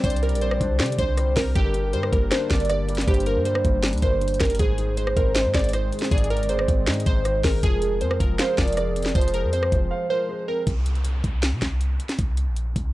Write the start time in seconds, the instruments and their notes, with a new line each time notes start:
Already playing: grand piano D3 G3 C4 D4 D5, analog synth pad D3 G3 C4 G4
0.04 808-style bass C2, grand piano D3, synth keys C5, soft synth lead D5, kick, closed hi-hat
0.10 closed hi-hat
0.16 closed hi-hat
0.22 grand piano G3, synth keys A#4, closed hi-hat
0.29 808-style bass A#1, closed hi-hat
0.35 closed hi-hat
0.41 grand piano C4, synth keys C5, closed hi-hat
0.51 cross-stick
0.61 808-style bass C2, grand piano D4, kick, closed hi-hat
0.79 808-style bass C3, grand piano D5, finger snap, snare, closed hi-hat
0.86 closed hi-hat
0.92 closed hi-hat
0.98 808-style bass C2, grand piano D3, synth keys C5, soft synth lead C5, kick, closed hi-hat
1.18 grand piano G3, cross-stick, closed hi-hat
1.36 808-style bass C2, grand piano C4, synth keys A#4, finger snap, kick, snare, open hi-hat
1.55 808-style bass G1, grand piano G2, analog synth pad G3 A#3, synth keys G4, soft synth lead A#4, kick, closed hi-hat
1.74 grand piano D3, closed hi-hat
1.93 808-style bass G2, grand piano G3, synth keys C5, closed hi-hat
2.03 cross-stick
2.12 808-style bass G1, grand piano A#3, synth keys A#4, kick, closed hi-hat
2.31 grand piano D4, synth keys C5, finger snap, snare, closed hi-hat
2.50 808-style bass G1, grand piano G2, synth keys D5, finger snap, kick, snare, closed hi-hat
2.55 closed hi-hat
2.60 closed hi-hat
2.65 closed hi-hat
2.69 grand piano D3, synth keys D5, cross-stick, closed hi-hat
2.88 grand piano G3, closed hi-hat
2.95 snare, closed hi-hat
3.01 closed hi-hat
3.07 808-style bass G1, grand piano G2, synth keys G4, soft synth lead C5, kick, closed hi-hat
3.14 closed hi-hat
3.20 closed hi-hat
3.26 grand piano D3, synth keys A#4, closed hi-hat
3.36 808-style bass G2
3.45 grand piano G3, synth keys C5, closed hi-hat
3.55 cross-stick
3.64 808-style bass G1, grand piano A#3, kick, closed hi-hat
3.83 grand piano D4, finger snap, snare, closed hi-hat
3.88 closed hi-hat
3.93 808-style bass D2, closed hi-hat
3.98 closed hi-hat
4.02 808-style bass G1, grand piano G2, soft synth lead A#4, synth keys C5, kick, closed hi-hat
4.21 grand piano D3, closed hi-hat
4.28 closed hi-hat
4.34 closed hi-hat
4.40 808-style bass G1, grand piano G3, synth keys A#4, finger snap, kick, snare, closed hi-hat, open hi-hat
4.45 closed hi-hat
4.50 closed hi-hat
4.55 closed hi-hat
4.59 808-style bass G#1, grand piano G#2, analog synth pad D#3 G#3 C4 G#4, synth keys G#4, soft synth lead C5, kick, closed hi-hat
4.78 grand piano D#3, closed hi-hat
4.97 grand piano G#3, synth keys C5, closed hi-hat
5.07 cross-stick
5.17 808-style bass G#1, grand piano C4, synth keys A#4, kick, closed hi-hat
5.35 grand piano D#4, synth keys C5, finger snap, snare, closed hi-hat
5.45 808-style bass G#2
5.54 808-style bass G#1, grand piano G#2, synth keys D5, finger snap, kick, snare, closed hi-hat
5.59 closed hi-hat
5.64 closed hi-hat
5.69 closed hi-hat
5.73 grand piano D#3, synth keys C5, cross-stick, closed hi-hat
5.92 grand piano G#3, closed hi-hat
5.99 snare, closed hi-hat
6.05 closed hi-hat
6.11 808-style bass G#1, grand piano G#2, synth keys G#4, soft synth lead D5, kick, closed hi-hat
6.18 closed hi-hat
6.24 closed hi-hat
6.30 grand piano D#3, synth keys A#4, closed hi-hat
6.37 808-style bass G1, closed hi-hat
6.43 closed hi-hat
6.49 grand piano G#3, synth keys C5, closed hi-hat
6.59 cross-stick
6.68 808-style bass G#1, grand piano C4, kick, closed hi-hat
6.87 808-style bass G#2, grand piano D#4, finger snap, snare, closed hi-hat
6.94 closed hi-hat
7.00 closed hi-hat
7.06 808-style bass G#1, grand piano G#2, soft synth lead C5, synth keys C5, kick, closed hi-hat
7.25 grand piano D#3, cross-stick, closed hi-hat
7.44 808-style bass G#1, grand piano G#3, synth keys A#4, finger snap, kick, snare, open hi-hat
7.63 808-style bass F1, grand piano F3, analog synth pad F3 G#4, synth keys G#4, soft synth lead A#4, kick, closed hi-hat
7.82 grand piano G#3, closed hi-hat
8.01 808-style bass F2, grand piano C4, synth keys C5, closed hi-hat
8.11 cross-stick
8.20 808-style bass F1, grand piano F4, synth keys A#4, kick, closed hi-hat
8.39 synth keys C5, grand piano F5, finger snap, snare, closed hi-hat
8.58 808-style bass F1, grand piano F3, synth keys D5, finger snap, kick, snare, closed hi-hat
8.63 closed hi-hat
8.68 closed hi-hat
8.72 closed hi-hat
8.77 grand piano G#3, synth keys D5, cross-stick, closed hi-hat
8.96 grand piano C4, closed hi-hat
9.03 snare, closed hi-hat
9.09 closed hi-hat
9.15 808-style bass F1, grand piano F3, synth keys C5, soft synth lead C5, kick, closed hi-hat
9.21 closed hi-hat
9.28 closed hi-hat
9.34 grand piano G#3, synth keys A#4, closed hi-hat
9.44 808-style bass F2
9.53 grand piano C4, synth keys C5, closed hi-hat
9.63 cross-stick
9.72 808-style bass F1, grand piano F4, kick, closed hi-hat
9.91 grand piano F5
10.10 grand piano F3, soft synth lead A#4, synth keys C5
10.29 grand piano G#3
10.48 grand piano C4, synth keys A#4
10.67 808-style bass C2, kick, closed hi-hat, downlifter
10.86 closed hi-hat
10.95 closed hi-hat
11.05 closed hi-hat
11.24 808-style bass C2, kick, closed hi-hat
11.43 finger snap, snare, closed hi-hat
11.52 808-style bass C3
11.62 808-style bass C2, finger snap, kick, snare, closed hi-hat
11.81 closed hi-hat
12.00 closed hi-hat
12.09 snare, closed hi-hat
12.19 808-style bass C2, kick, closed hi-hat
12.37 closed hi-hat
12.47 808-style bass A#1
12.56 closed hi-hat
12.76 808-style bass C2, kick, closed hi-hat